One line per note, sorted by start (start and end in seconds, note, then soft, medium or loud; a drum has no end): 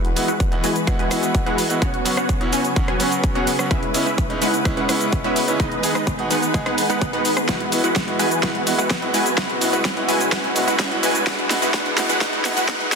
0.00 1.80 E3 medium
0.00 0.25 G#3 loud
0.00 1.80 G#3 medium
0.00 3.67 B3 medium
0.00 0.25 E4 medium
0.00 0.25 F#4 medium
0.00 3.67 F#4 medium
0.00 0.25 B4 medium
0.00 1.80 B4 medium
0.00 0.25 F#5 loud
0.00 riser medium
0.05 closed hi-hat soft
0.16 0.28 G#3 medium
0.16 0.28 B3 medium
0.16 0.28 E4 medium
0.16 0.28 F#4 medium
0.16 open hi-hat loud
0.16 cabasa medium
0.28 0.61 G#3 medium
0.28 0.61 E4 medium
0.28 0.61 F#4 medium
0.28 0.61 B4 medium
0.28 0.61 F#5 medium
0.28 closed hi-hat soft
0.28 cabasa soft
0.40 kick loud
0.40 closed hi-hat medium
0.40 cabasa soft
0.51 0.70 G#3 medium
0.51 0.70 B3 medium
0.51 0.70 E4 medium
0.51 0.71 F#4 medium
0.51 closed hi-hat soft
0.64 0.96 G#3 medium
0.64 0.96 E4 medium
0.64 0.96 F#4 medium
0.64 0.96 B4 medium
0.64 0.96 G#5 medium
0.64 open hi-hat loud
0.64 cabasa medium
0.76 closed hi-hat soft
0.76 cabasa soft
0.87 1.05 G#3 medium
0.87 1.06 B3 medium
0.87 1.06 E4 medium
0.87 1.06 F#4 loud
0.87 kick loud
0.87 cross-stick medium
0.87 closed hi-hat medium
0.87 cabasa soft
0.99 1.44 G#3 medium
0.99 1.44 E4 medium
0.99 1.44 F#4 medium
0.99 1.44 B4 medium
0.99 1.44 G#5 medium
0.99 closed hi-hat soft
1.10 1.43 G#3 medium
1.10 1.43 B3 medium
1.10 1.44 E4 medium
1.10 1.44 F#4 loud
1.10 cross-stick medium
1.10 open hi-hat loud
1.10 cabasa medium
1.23 closed hi-hat soft
1.23 cabasa soft
1.35 kick loud
1.35 closed hi-hat medium
1.35 cabasa soft
1.46 1.65 G#3 medium
1.46 1.61 G#3 medium
1.46 1.65 B3 medium
1.46 1.61 E4 medium
1.46 1.65 E4 medium
1.46 1.61 F#4 medium
1.46 1.65 G#4 medium
1.46 1.61 B4 medium
1.46 1.61 F#5 loud
1.46 closed hi-hat soft
1.58 open hi-hat loud
1.58 cabasa medium
1.69 1.80 G#3 medium
1.69 1.80 B3 medium
1.69 1.81 E4 medium
1.69 1.81 F#4 medium
1.69 closed hi-hat soft
1.69 cabasa soft
1.82 5.56 C#3 medium
1.82 3.69 F#3 medium
1.82 2.14 B3 loud
1.82 2.14 C#4 medium
1.82 2.14 F#4 medium
1.82 12.95 B4 medium
1.82 2.14 C#5 medium
1.82 2.14 F#5 loud
1.82 kick loud
1.82 closed hi-hat medium
1.82 cabasa soft
1.94 closed hi-hat soft
2.05 2.17 F#3 medium
2.05 2.17 B3 medium
2.05 2.17 C#4 medium
2.05 2.17 F#4 medium
2.05 open hi-hat loud
2.05 cabasa medium
2.17 2.50 B3 medium
2.17 2.50 C#4 medium
2.17 2.50 F#4 medium
2.17 2.50 C#5 medium
2.17 2.50 F#5 medium
2.17 cross-stick medium
2.17 cabasa soft
2.29 kick loud
2.29 closed hi-hat medium
2.29 cabasa soft
2.40 2.59 F#3 medium
2.40 2.59 B3 medium
2.40 2.59 C#4 medium
2.40 2.60 E4 medium
2.40 closed hi-hat soft
2.53 2.85 B3 medium
2.53 2.85 C#4 medium
2.53 2.85 F#4 medium
2.53 2.85 C#5 medium
2.53 2.85 G#5 medium
2.53 open hi-hat loud
2.53 cabasa medium
2.64 closed hi-hat soft
2.64 cabasa soft
2.76 2.94 F#3 medium
2.76 2.95 B3 medium
2.76 2.95 C#4 medium
2.76 2.95 F#4 loud
2.76 kick loud
2.76 closed hi-hat medium
2.76 cabasa soft
2.88 3.33 B3 medium
2.88 3.33 C#4 medium
2.88 3.33 F#4 medium
2.88 3.33 C#5 medium
2.88 3.33 G#5 medium
2.88 cross-stick medium
2.88 closed hi-hat soft
2.99 3.32 F#3 medium
2.99 3.32 B3 medium
2.99 3.33 C#4 medium
2.99 3.33 F#4 loud
2.99 open hi-hat loud
2.99 cabasa medium
3.12 closed hi-hat soft
3.12 cabasa soft
3.24 kick loud
3.24 closed hi-hat medium
3.24 cabasa soft
3.35 3.53 F#3 medium
3.35 3.54 B3 medium
3.35 3.50 B3 medium
3.35 3.50 C#4 medium
3.35 3.54 C#4 medium
3.35 3.50 F#4 medium
3.35 3.54 G#4 medium
3.35 3.50 C#5 medium
3.35 3.50 F#5 loud
3.35 closed hi-hat soft
3.47 open hi-hat loud
3.47 cabasa medium
3.58 3.69 F#3 medium
3.58 3.69 B3 medium
3.58 3.70 C#4 medium
3.58 3.70 F#4 medium
3.58 cross-stick medium
3.58 closed hi-hat soft
3.58 cabasa soft
3.71 9.34 G#3 medium
3.71 4.03 G#3 loud
3.71 12.95 B3 medium
3.71 4.03 C#4 medium
3.71 5.58 E4 medium
3.71 4.03 E4 medium
3.71 4.03 B4 medium
3.71 4.03 E5 loud
3.71 kick loud
3.71 closed hi-hat medium
3.71 cabasa soft
3.83 closed hi-hat soft
3.94 4.06 G#3 medium
3.94 4.06 B3 medium
3.94 4.06 C#4 medium
3.94 4.06 E4 medium
3.94 open hi-hat loud
3.94 cabasa medium
4.06 4.39 G#3 medium
4.06 4.39 C#4 medium
4.06 4.39 E4 medium
4.06 4.39 B4 medium
4.06 4.39 E5 medium
4.06 closed hi-hat soft
4.06 cabasa soft
4.18 kick loud
4.18 closed hi-hat medium
4.18 cabasa soft
4.29 4.48 G#3 medium
4.29 4.48 B3 medium
4.29 4.48 C#4 medium
4.29 4.49 D#4 loud
4.29 closed hi-hat soft
4.42 4.74 G#3 medium
4.42 4.74 C#4 medium
4.42 4.74 E4 medium
4.42 4.74 B4 medium
4.42 4.74 F#5 medium
4.42 open hi-hat loud
4.42 cabasa medium
4.54 closed hi-hat soft
4.54 cabasa soft
4.65 4.83 G#3 medium
4.65 4.84 B3 medium
4.65 4.84 C#4 medium
4.65 4.84 E4 loud
4.65 kick loud
4.65 cross-stick medium
4.65 closed hi-hat medium
4.65 cabasa soft
4.77 5.21 G#3 medium
4.77 5.22 C#4 medium
4.77 5.22 E4 medium
4.77 5.22 B4 medium
4.77 5.22 F#5 medium
4.77 closed hi-hat soft
4.88 5.21 G#3 medium
4.88 5.22 B3 medium
4.88 5.22 C#4 medium
4.88 5.22 E4 loud
4.88 cross-stick medium
4.88 open hi-hat loud
4.88 cabasa medium
5.01 closed hi-hat soft
5.01 cabasa soft
5.12 kick loud
5.12 closed hi-hat medium
5.12 cabasa soft
5.24 5.43 G#3 medium
5.24 5.39 G#3 medium
5.24 5.43 B3 medium
5.24 5.39 C#4 medium
5.24 5.43 C#4 medium
5.24 5.39 E4 medium
5.24 5.43 F#4 medium
5.24 5.39 B4 medium
5.24 5.39 E5 loud
5.24 closed hi-hat soft
5.36 open hi-hat loud
5.36 cabasa medium
5.48 5.58 G#3 medium
5.48 5.58 B3 medium
5.48 5.59 C#4 medium
5.48 5.59 E4 medium
5.48 closed hi-hat soft
5.48 cabasa soft
5.60 7.47 D#3 medium
5.60 5.92 G#3 loud
5.60 5.92 B3 medium
5.60 5.92 D#4 medium
5.60 7.47 G#4 medium
5.60 5.92 B4 medium
5.60 5.92 D#5 loud
5.60 kick loud
5.60 closed hi-hat medium
5.60 cabasa soft
5.72 closed hi-hat soft
5.83 5.95 G#3 medium
5.83 5.95 B3 medium
5.83 5.95 D#4 medium
5.83 5.95 G#4 medium
5.83 open hi-hat loud
5.83 cabasa medium
5.95 6.28 G#3 medium
5.95 6.28 B3 medium
5.95 6.28 D#4 medium
5.95 6.28 B4 medium
5.95 6.28 D#5 medium
5.95 cross-stick medium
5.95 cabasa soft
6.07 kick loud
6.07 closed hi-hat medium
6.07 cabasa soft
6.18 6.37 G#3 medium
6.18 6.37 B3 medium
6.18 6.37 D#4 medium
6.18 6.38 F#4 loud
6.18 closed hi-hat soft
6.31 6.63 G#3 medium
6.31 6.63 B3 medium
6.31 6.63 D#4 medium
6.31 6.63 B4 medium
6.31 6.63 F#5 medium
6.31 open hi-hat loud
6.31 cabasa medium
6.42 closed hi-hat soft
6.42 cabasa soft
6.54 6.72 G#3 medium
6.54 6.73 B3 medium
6.54 6.73 D#4 medium
6.54 6.73 G#4 loud
6.54 kick loud
6.54 closed hi-hat medium
6.54 cabasa soft
6.66 6.87 G#3 medium
6.66 6.87 B3 medium
6.66 6.87 D#4 medium
6.66 6.87 B4 medium
6.66 6.87 F#5 medium
6.66 cross-stick medium
6.66 closed hi-hat soft
6.78 open hi-hat loud
6.78 cabasa medium
6.89 7.08 G#3 medium
6.89 7.04 G#3 medium
6.89 7.08 B3 medium
6.89 7.04 B3 medium
6.89 7.04 D#4 medium
6.89 7.08 D#4 medium
6.89 7.04 B4 medium
6.89 7.08 B4 medium
6.89 7.04 F#5 medium
6.89 cabasa soft
7.01 kick loud
7.01 closed hi-hat medium
7.01 cabasa soft
7.13 7.25 G#3 medium
7.13 7.46 G#3 medium
7.13 7.25 B3 medium
7.13 7.46 B3 medium
7.13 7.46 D#4 medium
7.13 7.25 D#4 medium
7.13 7.25 F#4 medium
7.13 7.46 B4 medium
7.13 7.46 F#5 loud
7.13 closed hi-hat soft
7.25 open hi-hat loud
7.25 cabasa medium
7.37 cross-stick medium
7.37 cabasa soft
7.49 9.36 E3 medium
7.49 7.81 G#3 loud
7.49 7.81 E4 medium
7.49 11.23 F#4 medium
7.49 7.81 F#4 medium
7.49 7.81 B4 medium
7.49 7.81 F#5 loud
7.49 kick loud
7.49 snare medium
7.49 closed hi-hat medium
7.49 cabasa soft
7.60 closed hi-hat soft
7.72 7.84 G#3 medium
7.72 7.84 B3 medium
7.72 7.84 E4 medium
7.72 7.84 F#4 medium
7.72 open hi-hat loud
7.72 cabasa medium
7.84 8.17 G#3 medium
7.84 8.17 E4 medium
7.84 8.17 F#4 medium
7.84 8.17 B4 medium
7.84 8.17 F#5 medium
7.84 closed hi-hat soft
7.84 cabasa soft
7.96 kick loud
7.96 snare soft
7.96 closed hi-hat medium
7.96 cabasa soft
8.07 8.26 G#3 medium
8.07 8.26 B3 medium
8.07 8.26 E4 medium
8.07 8.26 F#4 medium
8.07 closed hi-hat soft
8.19 8.41 G#3 medium
8.19 8.41 E4 medium
8.19 8.41 F#4 medium
8.19 8.41 B4 medium
8.19 8.41 G#5 medium
8.19 open hi-hat loud
8.19 cabasa medium
8.31 closed hi-hat soft
8.31 cabasa soft
8.43 8.76 G#3 loud
8.43 8.76 E4 medium
8.43 8.76 F#4 medium
8.43 8.76 B4 medium
8.43 8.76 F#5 loud
8.43 kick loud
8.43 snare medium
8.43 closed hi-hat medium
8.43 cabasa soft
8.55 closed hi-hat soft
8.66 8.78 G#3 medium
8.66 8.78 B3 medium
8.66 8.78 E4 medium
8.66 8.79 F#4 medium
8.66 open hi-hat loud
8.66 cabasa medium
8.78 9.11 G#3 medium
8.78 9.11 E4 medium
8.78 9.11 F#4 medium
8.78 9.11 B4 medium
8.78 9.11 F#5 medium
8.78 closed hi-hat soft
8.78 cabasa soft
8.90 kick loud
8.90 snare medium
8.90 closed hi-hat medium
8.90 cabasa soft
9.01 9.20 G#3 medium
9.01 9.20 B3 medium
9.01 9.21 E4 medium
9.01 9.21 F#4 medium
9.01 closed hi-hat soft
9.14 9.36 G#3 medium
9.14 9.36 E4 medium
9.14 9.36 F#4 medium
9.14 9.36 B4 medium
9.14 9.36 G#5 medium
9.14 open hi-hat loud
9.14 cabasa medium
9.26 closed hi-hat soft
9.26 cabasa soft
9.37 12.95 C#3 medium
9.37 11.25 F#3 medium
9.37 9.70 G#3 medium
9.37 9.70 E4 medium
9.37 9.70 F#4 medium
9.37 9.70 B4 medium
9.37 9.70 F#5 loud
9.37 kick loud
9.37 snare medium
9.37 closed hi-hat medium
9.37 cabasa soft
9.50 closed hi-hat soft
9.61 9.72 G#3 medium
9.61 9.73 B3 medium
9.61 9.73 E4 medium
9.61 9.73 F#4 medium
9.61 open hi-hat loud
9.61 cabasa medium
9.73 10.06 G#3 medium
9.73 10.06 E4 medium
9.73 10.06 F#4 medium
9.73 10.06 B4 medium
9.73 10.06 F#5 medium
9.73 closed hi-hat soft
9.73 cabasa soft
9.85 kick loud
9.85 snare medium
9.85 closed hi-hat medium
9.85 cabasa soft
9.96 10.15 G#3 medium
9.96 10.15 B3 medium
9.96 10.15 E4 medium
9.96 10.15 F#4 medium
9.96 closed hi-hat soft
10.08 10.30 G#3 medium
10.08 10.30 E4 medium
10.08 10.30 F#4 medium
10.08 10.30 B4 medium
10.08 10.30 G#5 medium
10.08 open hi-hat loud
10.08 cabasa medium
10.20 closed hi-hat soft
10.20 cabasa soft
10.32 10.65 G#3 loud
10.32 10.65 E4 medium
10.32 10.65 F#4 medium
10.32 10.65 B4 medium
10.32 10.65 F#5 loud
10.32 kick loud
10.32 snare medium
10.32 closed hi-hat medium
10.32 cabasa soft
10.44 closed hi-hat soft
10.55 10.67 G#3 medium
10.55 10.67 B3 medium
10.55 10.67 E4 medium
10.55 10.68 F#4 medium
10.55 open hi-hat loud
10.55 cabasa medium
10.68 11.00 G#3 medium
10.68 11.00 E4 medium
10.68 11.00 F#4 medium
10.68 11.00 B4 medium
10.68 11.00 F#5 medium
10.68 closed hi-hat soft
10.68 cabasa soft
10.79 kick loud
10.79 snare medium
10.79 closed hi-hat medium
10.79 cabasa soft
10.91 11.09 G#3 medium
10.91 11.10 B3 medium
10.91 11.10 E4 medium
10.91 11.10 F#4 medium
10.91 closed hi-hat soft
11.03 11.25 G#3 medium
11.03 11.25 E4 medium
11.03 11.25 F#4 medium
11.03 11.25 B4 medium
11.03 11.25 G#5 medium
11.03 open hi-hat loud
11.03 cabasa medium
11.15 closed hi-hat soft
11.15 cabasa soft
11.27 12.95 G#3 medium
11.27 11.59 G#3 loud
11.27 12.95 E4 medium
11.27 11.59 E4 medium
11.27 11.59 F#4 medium
11.27 11.59 B4 medium
11.27 11.59 F#5 loud
11.27 kick loud
11.27 snare medium
11.27 closed hi-hat medium
11.27 cabasa soft
11.39 closed hi-hat soft
11.50 11.62 G#3 medium
11.50 11.62 B3 medium
11.50 11.62 E4 medium
11.50 11.62 F#4 medium
11.50 snare medium
11.50 open hi-hat loud
11.50 cabasa medium
11.62 11.72 G#3 medium
11.62 11.72 E4 medium
11.62 11.72 F#4 medium
11.62 11.72 B4 medium
11.62 11.72 F#5 medium
11.62 closed hi-hat soft
11.62 cabasa soft
11.74 12.06 F#5 loud
11.74 kick loud
11.74 snare medium
11.74 closed hi-hat medium
11.74 cabasa soft
11.86 closed hi-hat soft
11.97 12.09 G#3 medium
11.97 12.09 B3 medium
11.97 12.09 E4 medium
11.97 12.09 F#4 loud
11.97 snare medium
11.97 open hi-hat loud
11.97 cabasa medium
12.09 12.19 G#3 medium
12.09 12.19 E4 medium
12.09 12.19 F#4 medium
12.09 12.19 B4 medium
12.09 12.19 F#5 medium
12.09 closed hi-hat soft
12.09 cabasa soft
12.21 12.54 G#3 loud
12.21 12.54 E4 medium
12.21 kick loud
12.21 snare medium
12.21 closed hi-hat medium
12.21 cabasa soft
12.33 closed hi-hat soft
12.44 12.56 G#3 medium
12.44 12.56 B3 medium
12.44 12.57 E4 medium
12.44 12.57 F#4 medium
12.44 snare medium
12.44 open hi-hat loud
12.44 cabasa medium
12.57 12.67 G#3 medium
12.57 12.67 E4 medium
12.57 12.67 F#4 medium
12.57 12.67 B4 medium
12.57 12.67 F#5 medium
12.57 closed hi-hat soft
12.57 cabasa soft
12.68 12.95 G#3 loud
12.68 12.95 F#4 medium
12.68 12.95 B4 medium
12.68 12.95 F#5 loud
12.68 kick loud
12.68 snare medium
12.68 closed hi-hat medium
12.68 cabasa soft
12.80 closed hi-hat soft
12.91 12.95 G#3 medium
12.91 12.95 B3 medium
12.91 12.95 E4 medium
12.91 snare medium
12.91 open hi-hat loud